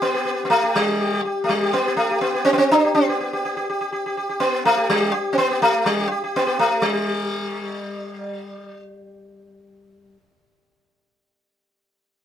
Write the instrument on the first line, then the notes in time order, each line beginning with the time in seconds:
sitar
Already playing: G4
0.02 B3
0.14 G4
0.25 G4
0.45 B3
0.50 A3
0.63 G4
0.76 G3
1.00 G4
1.14 G4
1.25 G4
1.44 A3
1.49 G3
1.63 G4
1.73 B3
1.87 G4
1.97 A3
2.11 G4
2.21 B3
2.34 G4
2.45 C4
2.53 B3
2.58 C4
2.71 D4
2.84 G4
2.95 B3
3.09 G4
3.20 G4
3.33 G4
3.45 G4
3.57 G4
3.70 G4
3.81 G4
3.92 G4
4.06 G4
4.17 G4
4.29 G4
4.40 B3
4.65 A3
4.77 G4
4.90 G3
5.00 G4
5.13 G4
5.33 C4
5.38 B3
5.51 G4
5.62 A3
5.86 G3
6.00 G4
6.11 G4
6.24 G4
6.36 B3
6.47 G4
6.59 A3
6.82 G3